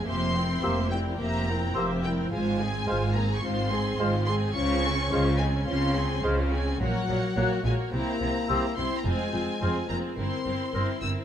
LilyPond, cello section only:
\new Staff \with { instrumentName = "Cello section" } { \clef bass \time 4/4 \key f \minor \tempo 4 = 107 f,4 f,4 f,4 f,4 | aes,4 aes,4 aes,4 aes,4 | des4 des4 des4 des4 | bes,8 bes,8 bes,8 bes,8 c8 c8 c8 c8 |
f,8 f,8 f,8 f,8 g,8 g,8 g,8 g,8 | }